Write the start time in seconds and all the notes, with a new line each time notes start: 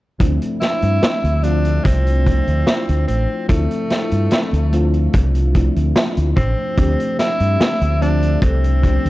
0.19 D2 F3 A3 C4 D4 E4, kick, closed hi-hat
0.42 closed hi-hat
0.61 E4, snare, closed hi-hat
0.82 G2, closed hi-hat
1.03 snare, closed hi-hat
1.24 D2, closed hi-hat
1.43 F3 A3 C4 D4 F4, closed hi-hat
1.65 closed hi-hat
1.84 C2 C4, kick, closed hi-hat
2.06 closed hi-hat
2.25 F3 A3 C4 D4 E4, kick, closed hi-hat
2.47 D2, closed hi-hat
2.67 snare, closed hi-hat
2.89 D2, closed hi-hat
3.07 A1 C4, closed hi-hat
3.48 D2 F3 A3 C4 D4 E4, kick, closed hi-hat
3.71 closed hi-hat
3.90 snare, closed hi-hat
4.11 G2, closed hi-hat
4.31 snare, closed hi-hat
4.53 D2, closed hi-hat
4.72 F3 A3 C4 D4 F4, closed hi-hat
4.94 closed hi-hat
5.13 C2, kick, closed hi-hat
5.35 closed hi-hat
5.53 F3 A3 C4 D4 E4, kick, closed hi-hat
5.76 D2, closed hi-hat
5.96 snare, closed hi-hat
6.17 D2, closed hi-hat
6.37 A1 C4, kick, closed hi-hat
6.77 D2 F3 A3 C4 D4 G4, kick, closed hi-hat
7.00 closed hi-hat
7.19 E4, snare, closed hi-hat
7.40 G2, closed hi-hat
7.61 snare, closed hi-hat
7.81 D2, closed hi-hat
8.00 F3 A3 C4 D4 A4, closed hi-hat
8.23 closed hi-hat
8.42 C2 C4, kick, closed hi-hat
8.64 closed hi-hat
8.82 F3 A3 C4 D4 G4, kick, closed hi-hat
9.05 D2, closed hi-hat